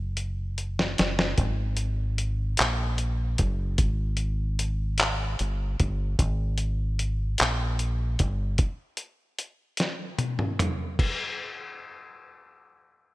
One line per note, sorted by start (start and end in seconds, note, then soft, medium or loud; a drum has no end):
0.00 0.95 F#1 medium
0.17 closed hi-hat medium
0.58 closed hi-hat soft
0.79 snare medium
0.98 1.35 F#1 medium
0.98 snare medium
0.98 closed hi-hat medium
1.19 snare medium
1.38 2.55 G#1 loud
1.38 kick loud
1.38 closed hi-hat medium
1.77 closed hi-hat medium
2.18 closed hi-hat medium
2.57 3.35 A#1 medium
2.57 clap loud
2.57 closed hi-hat medium
2.98 closed hi-hat medium
3.38 3.79 F#1 loud
3.38 kick medium
3.38 closed hi-hat medium
3.78 5.35 G#1 loud
3.78 kick loud
3.78 closed hi-hat medium
4.17 closed hi-hat medium
4.59 closed hi-hat medium
4.98 clap loud
4.98 closed hi-hat medium
5.39 5.75 G1 medium
5.39 closed hi-hat medium
5.80 6.16 G1 loud
5.80 kick loud
5.80 closed hi-hat medium
6.19 7.35 G#1 loud
6.19 kick loud
6.19 closed hi-hat medium
6.58 closed hi-hat medium
6.99 closed hi-hat medium
7.38 8.16 A#1 medium
7.38 clap loud
7.38 closed hi-hat medium
7.79 closed hi-hat medium
8.19 8.56 G1 loud
8.19 kick loud
8.19 closed hi-hat medium
8.58 kick loud
8.58 closed hi-hat medium
8.97 closed hi-hat medium
9.39 closed hi-hat medium
9.77 snare medium
9.77 closed hi-hat medium
10.19 closed hi-hat medium
10.19 high tom medium
10.39 mid tom medium
10.59 closed hi-hat medium
10.59 mid tom loud
10.99 kick loud
10.99 crash medium